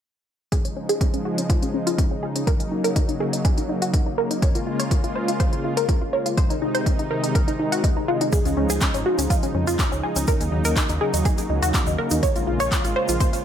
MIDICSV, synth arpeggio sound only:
0, 0, Header, 1, 2, 480
1, 0, Start_track
1, 0, Key_signature, -5, "major"
1, 0, Tempo, 487805
1, 513, Time_signature, 4, 2, 24, 8
1, 13232, End_track
2, 0, Start_track
2, 0, Title_t, "Synth arpeggio sound"
2, 0, Program_c, 0, 84
2, 513, Note_on_c, 0, 68, 96
2, 596, Note_off_c, 0, 68, 0
2, 638, Note_on_c, 0, 61, 59
2, 714, Note_off_c, 0, 61, 0
2, 753, Note_on_c, 0, 61, 59
2, 836, Note_off_c, 0, 61, 0
2, 878, Note_on_c, 0, 68, 86
2, 954, Note_off_c, 0, 68, 0
2, 993, Note_on_c, 0, 61, 57
2, 1076, Note_off_c, 0, 61, 0
2, 1118, Note_on_c, 0, 61, 62
2, 1195, Note_off_c, 0, 61, 0
2, 1232, Note_on_c, 0, 66, 79
2, 1316, Note_off_c, 0, 66, 0
2, 1358, Note_on_c, 0, 61, 59
2, 1434, Note_off_c, 0, 61, 0
2, 1472, Note_on_c, 0, 65, 89
2, 1556, Note_off_c, 0, 65, 0
2, 1599, Note_on_c, 0, 61, 59
2, 1675, Note_off_c, 0, 61, 0
2, 1713, Note_on_c, 0, 61, 60
2, 1796, Note_off_c, 0, 61, 0
2, 1838, Note_on_c, 0, 65, 85
2, 1914, Note_off_c, 0, 65, 0
2, 1953, Note_on_c, 0, 61, 59
2, 2036, Note_off_c, 0, 61, 0
2, 2078, Note_on_c, 0, 61, 60
2, 2155, Note_off_c, 0, 61, 0
2, 2193, Note_on_c, 0, 68, 77
2, 2276, Note_off_c, 0, 68, 0
2, 2318, Note_on_c, 0, 61, 60
2, 2395, Note_off_c, 0, 61, 0
2, 2432, Note_on_c, 0, 70, 96
2, 2516, Note_off_c, 0, 70, 0
2, 2558, Note_on_c, 0, 63, 55
2, 2634, Note_off_c, 0, 63, 0
2, 2672, Note_on_c, 0, 63, 60
2, 2756, Note_off_c, 0, 63, 0
2, 2798, Note_on_c, 0, 70, 95
2, 2874, Note_off_c, 0, 70, 0
2, 2913, Note_on_c, 0, 63, 58
2, 2996, Note_off_c, 0, 63, 0
2, 3038, Note_on_c, 0, 63, 61
2, 3115, Note_off_c, 0, 63, 0
2, 3152, Note_on_c, 0, 68, 84
2, 3236, Note_off_c, 0, 68, 0
2, 3278, Note_on_c, 0, 63, 60
2, 3355, Note_off_c, 0, 63, 0
2, 3393, Note_on_c, 0, 68, 86
2, 3476, Note_off_c, 0, 68, 0
2, 3518, Note_on_c, 0, 63, 59
2, 3595, Note_off_c, 0, 63, 0
2, 3633, Note_on_c, 0, 63, 60
2, 3716, Note_off_c, 0, 63, 0
2, 3759, Note_on_c, 0, 66, 86
2, 3835, Note_off_c, 0, 66, 0
2, 3873, Note_on_c, 0, 63, 60
2, 3956, Note_off_c, 0, 63, 0
2, 3999, Note_on_c, 0, 63, 61
2, 4075, Note_off_c, 0, 63, 0
2, 4113, Note_on_c, 0, 70, 86
2, 4197, Note_off_c, 0, 70, 0
2, 4239, Note_on_c, 0, 63, 64
2, 4315, Note_off_c, 0, 63, 0
2, 4353, Note_on_c, 0, 73, 91
2, 4437, Note_off_c, 0, 73, 0
2, 4479, Note_on_c, 0, 65, 57
2, 4555, Note_off_c, 0, 65, 0
2, 4593, Note_on_c, 0, 65, 60
2, 4677, Note_off_c, 0, 65, 0
2, 4719, Note_on_c, 0, 73, 86
2, 4795, Note_off_c, 0, 73, 0
2, 4833, Note_on_c, 0, 65, 61
2, 4917, Note_off_c, 0, 65, 0
2, 4959, Note_on_c, 0, 65, 61
2, 5035, Note_off_c, 0, 65, 0
2, 5073, Note_on_c, 0, 72, 82
2, 5156, Note_off_c, 0, 72, 0
2, 5199, Note_on_c, 0, 65, 65
2, 5275, Note_off_c, 0, 65, 0
2, 5312, Note_on_c, 0, 72, 91
2, 5396, Note_off_c, 0, 72, 0
2, 5438, Note_on_c, 0, 65, 61
2, 5515, Note_off_c, 0, 65, 0
2, 5553, Note_on_c, 0, 65, 61
2, 5637, Note_off_c, 0, 65, 0
2, 5679, Note_on_c, 0, 70, 91
2, 5755, Note_off_c, 0, 70, 0
2, 5793, Note_on_c, 0, 65, 60
2, 5877, Note_off_c, 0, 65, 0
2, 5919, Note_on_c, 0, 65, 62
2, 5995, Note_off_c, 0, 65, 0
2, 6033, Note_on_c, 0, 73, 79
2, 6116, Note_off_c, 0, 73, 0
2, 6158, Note_on_c, 0, 65, 63
2, 6234, Note_off_c, 0, 65, 0
2, 6273, Note_on_c, 0, 72, 97
2, 6356, Note_off_c, 0, 72, 0
2, 6398, Note_on_c, 0, 63, 61
2, 6475, Note_off_c, 0, 63, 0
2, 6513, Note_on_c, 0, 63, 62
2, 6597, Note_off_c, 0, 63, 0
2, 6638, Note_on_c, 0, 72, 92
2, 6715, Note_off_c, 0, 72, 0
2, 6753, Note_on_c, 0, 63, 61
2, 6836, Note_off_c, 0, 63, 0
2, 6879, Note_on_c, 0, 63, 62
2, 6955, Note_off_c, 0, 63, 0
2, 6993, Note_on_c, 0, 70, 81
2, 7076, Note_off_c, 0, 70, 0
2, 7119, Note_on_c, 0, 63, 63
2, 7195, Note_off_c, 0, 63, 0
2, 7233, Note_on_c, 0, 70, 86
2, 7317, Note_off_c, 0, 70, 0
2, 7359, Note_on_c, 0, 63, 62
2, 7435, Note_off_c, 0, 63, 0
2, 7473, Note_on_c, 0, 63, 58
2, 7557, Note_off_c, 0, 63, 0
2, 7599, Note_on_c, 0, 66, 87
2, 7675, Note_off_c, 0, 66, 0
2, 7713, Note_on_c, 0, 63, 61
2, 7797, Note_off_c, 0, 63, 0
2, 7839, Note_on_c, 0, 63, 62
2, 7915, Note_off_c, 0, 63, 0
2, 7953, Note_on_c, 0, 65, 83
2, 8037, Note_off_c, 0, 65, 0
2, 8079, Note_on_c, 0, 63, 63
2, 8155, Note_off_c, 0, 63, 0
2, 8194, Note_on_c, 0, 68, 94
2, 8277, Note_off_c, 0, 68, 0
2, 8319, Note_on_c, 0, 61, 59
2, 8395, Note_off_c, 0, 61, 0
2, 8433, Note_on_c, 0, 61, 61
2, 8517, Note_off_c, 0, 61, 0
2, 8558, Note_on_c, 0, 68, 87
2, 8635, Note_off_c, 0, 68, 0
2, 8673, Note_on_c, 0, 61, 61
2, 8757, Note_off_c, 0, 61, 0
2, 8799, Note_on_c, 0, 61, 60
2, 8875, Note_off_c, 0, 61, 0
2, 8913, Note_on_c, 0, 66, 83
2, 8997, Note_off_c, 0, 66, 0
2, 9040, Note_on_c, 0, 61, 65
2, 9115, Note_off_c, 0, 61, 0
2, 9154, Note_on_c, 0, 65, 90
2, 9237, Note_off_c, 0, 65, 0
2, 9280, Note_on_c, 0, 61, 62
2, 9355, Note_off_c, 0, 61, 0
2, 9394, Note_on_c, 0, 61, 58
2, 9477, Note_off_c, 0, 61, 0
2, 9520, Note_on_c, 0, 65, 89
2, 9595, Note_off_c, 0, 65, 0
2, 9634, Note_on_c, 0, 61, 62
2, 9717, Note_off_c, 0, 61, 0
2, 9759, Note_on_c, 0, 61, 63
2, 9835, Note_off_c, 0, 61, 0
2, 9874, Note_on_c, 0, 68, 81
2, 9957, Note_off_c, 0, 68, 0
2, 10000, Note_on_c, 0, 61, 65
2, 10075, Note_off_c, 0, 61, 0
2, 10114, Note_on_c, 0, 70, 94
2, 10197, Note_off_c, 0, 70, 0
2, 10240, Note_on_c, 0, 63, 59
2, 10315, Note_off_c, 0, 63, 0
2, 10354, Note_on_c, 0, 63, 63
2, 10437, Note_off_c, 0, 63, 0
2, 10480, Note_on_c, 0, 70, 91
2, 10555, Note_off_c, 0, 70, 0
2, 10594, Note_on_c, 0, 63, 60
2, 10677, Note_off_c, 0, 63, 0
2, 10720, Note_on_c, 0, 63, 60
2, 10795, Note_off_c, 0, 63, 0
2, 10834, Note_on_c, 0, 68, 80
2, 10917, Note_off_c, 0, 68, 0
2, 10959, Note_on_c, 0, 63, 62
2, 11035, Note_off_c, 0, 63, 0
2, 11074, Note_on_c, 0, 68, 88
2, 11157, Note_off_c, 0, 68, 0
2, 11199, Note_on_c, 0, 63, 62
2, 11275, Note_off_c, 0, 63, 0
2, 11314, Note_on_c, 0, 63, 59
2, 11397, Note_off_c, 0, 63, 0
2, 11439, Note_on_c, 0, 66, 90
2, 11515, Note_off_c, 0, 66, 0
2, 11554, Note_on_c, 0, 63, 62
2, 11637, Note_off_c, 0, 63, 0
2, 11679, Note_on_c, 0, 63, 64
2, 11755, Note_off_c, 0, 63, 0
2, 11793, Note_on_c, 0, 70, 85
2, 11877, Note_off_c, 0, 70, 0
2, 11919, Note_on_c, 0, 63, 61
2, 11995, Note_off_c, 0, 63, 0
2, 12033, Note_on_c, 0, 73, 96
2, 12116, Note_off_c, 0, 73, 0
2, 12159, Note_on_c, 0, 65, 57
2, 12235, Note_off_c, 0, 65, 0
2, 12273, Note_on_c, 0, 65, 61
2, 12357, Note_off_c, 0, 65, 0
2, 12399, Note_on_c, 0, 73, 93
2, 12475, Note_off_c, 0, 73, 0
2, 12513, Note_on_c, 0, 65, 60
2, 12596, Note_off_c, 0, 65, 0
2, 12638, Note_on_c, 0, 65, 64
2, 12714, Note_off_c, 0, 65, 0
2, 12753, Note_on_c, 0, 72, 86
2, 12836, Note_off_c, 0, 72, 0
2, 12878, Note_on_c, 0, 65, 64
2, 12955, Note_off_c, 0, 65, 0
2, 12992, Note_on_c, 0, 72, 86
2, 13076, Note_off_c, 0, 72, 0
2, 13119, Note_on_c, 0, 65, 61
2, 13195, Note_off_c, 0, 65, 0
2, 13232, End_track
0, 0, End_of_file